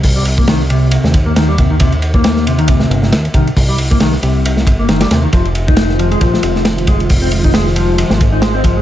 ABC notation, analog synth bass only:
X:1
M:4/4
L:1/16
Q:"Swing 16ths" 1/4=136
K:Fm
V:1 name="Analog synth bass" clef=bass
C,,8 z E,,6- E,,- | E,,8- E,, z G,,,2 E,, z C,, z | C,,4- C,, z C,,4 G,,,3 z E,, z | F,,,6- F,,, z B,,, z F,,,6- |
F,,,8 z A,,,6- A,,, |]